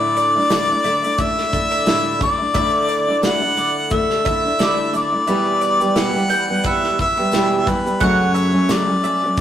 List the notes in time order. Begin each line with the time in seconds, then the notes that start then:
Already playing: A2 D3 A3 D4 E4 D5 E5
0.17 D5, tambourine, shaker
0.36 A3 D4 E4
0.50 A2 D3 A3 D4 E4 D5, snare, tambourine, shaker
0.69 A3 D4 E4
0.84 D3 A3 D4 E4 E5, tambourine, shaker
1.03 A3 D4 E4, shaker
1.18 A3 E4 D5 E5, kick, tambourine, shaker
1.38 snare
1.52 D3 A3 D4 E4, kick, tambourine, shaker
1.71 D5, shaker
1.86 A2 D3 A3 D4 E4, snare, tambourine, shaker
2.19 D3 A3 D4 E4 D5, kick, tambourine, shaker
2.39 A3 D4 E4
2.54 D3 A3 D4 E4 D5 E5, kick, tambourine, shaker
2.62 E4
2.88 D5, tambourine, shaker
3.06 A3 D4 E4
3.21 D3 A3 D4 E4, snare, tambourine, shaker
3.26 F#5
3.42 A3 D4 E4
3.56 D3 A3 D4 E4 D5, shaker
3.90 A3 E4 A4 E5, kick, shaker
4.10 snare
4.25 D3 A3 D4 E4 E5, kick, tambourine, shaker
4.45 A3 D4 E4
4.59 D3 A3 D4 E4 D5, snare, tambourine, shaker
4.93 D3 A3 D4 E4 D5, tambourine, shaker
5.12 A3 D4 E4
5.26 E2 B2 E3 G3 B3 E4 G4 B4 E5, tambourine, shaker
5.61 D5, tambourine, shaker
5.80 E3 G3 B3 G4, shaker
5.96 E2 B2 E3 G3 B3 G4 E5 F#5, snare, tambourine, shaker
6.14 E3 G3 B3 G4
6.30 E3 G3 B3 G4 G5, tambourine, shaker
6.49 E3 G3 B3 G4
6.64 G3 E4 B4 E5 F#5, kick, shaker
6.83 snare
6.99 E3 G3 B3 G4 E5, kick, tambourine, shaker
7.17 E3 G3 B3 G4 E5
7.31 E2 B2 E3 G3 B3 G4, snare, tambourine, shaker
7.66 E3 G3 B3 G4 B4, kick, tambourine, shaker
7.85 E3 G3 B3 G4, shaker
8.00 F#2 C#3 F#3 A3 C#4 F#4 C#5 F#5, kick, tambourine, shaker
8.34 E5, tambourine, shaker
8.52 F#3 A3 C#4 F#4
8.69 F#2 C#3 F#3 A3 C#4 F#4 D5, snare, tambourine, shaker
8.88 F#3 A3 C#4 F#4
9.04 F#3 A3 C#4 F#4 E5, shaker
9.23 F#3 A3 C#4 F#4
9.37 kick, tambourine, shaker